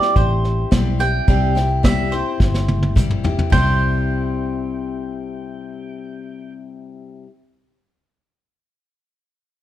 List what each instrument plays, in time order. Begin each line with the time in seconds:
Already playing: steel-string acoustic guitar G3 C4 E4 G4, mandolin D5
0.02 snare
0.16 fingered electric bass A1, mandolin C5, kick, snare
0.44 snare
0.71 fingered electric bass B1, steel-string acoustic guitar G3 C4 E4 G4, kick, snare, hi-hat pedal
0.99 steel-string acoustic guitar G3 C4 E4 G4, mandolin G5, snare
1.28 fingered electric bass C2, steel-string acoustic guitar C3 G3 C4 E4 G4, kick, snare
1.55 steel-string acoustic guitar C4 E4 G4, snare
1.83 steel-string acoustic guitar G3 C4 E4 G4, mandolin E5, kick, snare, hi-hat pedal
2.11 steel-string acoustic guitar C4 E4 G4, mandolin C5, snare
2.40 fingered electric bass G1, kick, snare
2.54 snare
2.68 high tom
2.82 high tom
2.96 steel-string acoustic guitar G3 C4 E4 G4, kick, hi-hat pedal, mid tom
3.10 mid tom
3.24 steel-string acoustic guitar C4 E4 G4, floor tom
3.39 floor tom
3.50 fingered electric bass C2, steel-string acoustic guitar C3 G3, mandolin C5, pedal steel guitar G5, kick, floor tom, open hi-hat
3.54 steel-string acoustic guitar C4 E4 G4